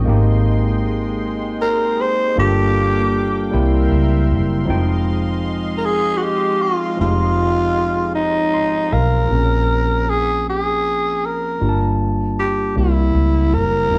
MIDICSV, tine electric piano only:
0, 0, Header, 1, 2, 480
1, 0, Start_track
1, 0, Key_signature, -4, "minor"
1, 0, Tempo, 769231
1, 36, Time_signature, 6, 3, 24, 8
1, 8727, End_track
2, 0, Start_track
2, 0, Title_t, "Tine electric piano"
2, 0, Program_c, 0, 4
2, 0, Control_c, 0, 64, 127
2, 29, Note_on_c, 0, 56, 78
2, 33, Note_on_c, 0, 58, 72
2, 43, Control_c, 0, 64, 0
2, 43, Note_on_c, 0, 59, 60
2, 49, Note_on_c, 0, 63, 76
2, 59, Note_on_c, 0, 67, 83
2, 80, Note_off_c, 0, 59, 0
2, 82, Note_on_c, 0, 60, 68
2, 158, Control_c, 0, 64, 127
2, 1447, Note_off_c, 0, 56, 0
2, 1449, Note_off_c, 0, 58, 0
2, 1458, Note_off_c, 0, 63, 0
2, 1462, Note_off_c, 0, 67, 0
2, 1472, Note_on_c, 0, 55, 72
2, 1474, Note_off_c, 0, 60, 0
2, 1476, Note_on_c, 0, 58, 62
2, 1482, Note_on_c, 0, 62, 60
2, 1482, Note_on_c, 0, 65, 63
2, 1484, Control_c, 0, 64, 0
2, 1485, Note_on_c, 0, 69, 75
2, 1585, Control_c, 0, 64, 127
2, 2184, Note_off_c, 0, 55, 0
2, 2192, Note_off_c, 0, 58, 0
2, 2192, Note_on_c, 0, 55, 73
2, 2199, Note_off_c, 0, 62, 0
2, 2199, Note_off_c, 0, 65, 0
2, 2200, Note_off_c, 0, 69, 0
2, 2200, Note_on_c, 0, 58, 67
2, 2202, Note_on_c, 0, 60, 70
2, 2205, Control_c, 0, 64, 0
2, 2206, Note_on_c, 0, 64, 76
2, 2206, Note_on_c, 0, 67, 87
2, 2301, Control_c, 0, 64, 127
2, 2903, Note_on_c, 0, 53, 86
2, 2911, Note_off_c, 0, 60, 0
2, 2912, Note_on_c, 0, 56, 75
2, 2914, Note_off_c, 0, 55, 0
2, 2918, Note_off_c, 0, 58, 0
2, 2919, Note_on_c, 0, 60, 76
2, 2921, Note_off_c, 0, 64, 0
2, 2921, Note_off_c, 0, 67, 0
2, 2924, Control_c, 0, 64, 0
2, 2930, Note_on_c, 0, 63, 73
2, 2933, Note_on_c, 0, 79, 96
2, 3023, Control_c, 0, 64, 127
2, 4324, Note_off_c, 0, 53, 0
2, 4329, Note_off_c, 0, 56, 0
2, 4332, Note_off_c, 0, 60, 0
2, 4338, Note_off_c, 0, 63, 0
2, 4339, Note_off_c, 0, 79, 0
2, 4350, Note_on_c, 0, 53, 67
2, 4356, Note_on_c, 0, 56, 58
2, 4364, Note_on_c, 0, 60, 64
2, 4375, Note_on_c, 0, 63, 57
2, 4381, Note_on_c, 0, 67, 76
2, 5329, Note_on_c, 0, 84, 70
2, 5546, Note_off_c, 0, 84, 0
2, 5571, Note_on_c, 0, 77, 69
2, 5768, Note_off_c, 0, 53, 0
2, 5771, Note_off_c, 0, 56, 0
2, 5775, Note_off_c, 0, 60, 0
2, 5780, Note_off_c, 0, 63, 0
2, 5783, Note_off_c, 0, 67, 0
2, 5786, Note_on_c, 0, 53, 55
2, 5787, Note_off_c, 0, 77, 0
2, 5796, Note_on_c, 0, 58, 49
2, 5800, Note_on_c, 0, 60, 47
2, 5803, Control_c, 0, 64, 0
2, 5809, Note_on_c, 0, 61, 52
2, 5818, Note_on_c, 0, 68, 58
2, 5909, Control_c, 0, 64, 127
2, 7206, Note_off_c, 0, 53, 0
2, 7211, Note_off_c, 0, 58, 0
2, 7213, Note_off_c, 0, 60, 0
2, 7218, Note_off_c, 0, 61, 0
2, 7222, Note_off_c, 0, 68, 0
2, 7239, Note_on_c, 0, 55, 54
2, 7242, Note_on_c, 0, 58, 51
2, 7245, Control_c, 0, 64, 0
2, 7246, Note_on_c, 0, 62, 49
2, 7249, Note_on_c, 0, 65, 52
2, 7254, Note_on_c, 0, 67, 51
2, 7286, Note_off_c, 0, 67, 0
2, 7293, Note_on_c, 0, 81, 62
2, 7355, Control_c, 0, 64, 127
2, 7951, Note_off_c, 0, 55, 0
2, 7955, Note_off_c, 0, 58, 0
2, 7959, Note_on_c, 0, 55, 53
2, 7961, Note_off_c, 0, 62, 0
2, 7962, Note_off_c, 0, 65, 0
2, 7962, Note_on_c, 0, 58, 52
2, 7965, Control_c, 0, 64, 0
2, 7966, Note_on_c, 0, 60, 50
2, 7973, Note_on_c, 0, 64, 51
2, 7973, Note_on_c, 0, 67, 66
2, 7984, Note_off_c, 0, 81, 0
2, 8082, Control_c, 0, 64, 127
2, 8665, Note_on_c, 0, 53, 58
2, 8671, Note_on_c, 0, 56, 56
2, 8672, Note_off_c, 0, 60, 0
2, 8677, Note_off_c, 0, 55, 0
2, 8679, Note_off_c, 0, 58, 0
2, 8680, Note_on_c, 0, 60, 55
2, 8685, Note_off_c, 0, 64, 0
2, 8685, Note_off_c, 0, 67, 0
2, 8685, Control_c, 0, 64, 0
2, 8685, Note_on_c, 0, 63, 50
2, 8696, Note_on_c, 0, 65, 52
2, 8726, Note_off_c, 0, 65, 0
2, 8727, Note_off_c, 0, 53, 0
2, 8727, Note_off_c, 0, 56, 0
2, 8727, Note_off_c, 0, 60, 0
2, 8727, Note_off_c, 0, 63, 0
2, 8727, End_track
0, 0, End_of_file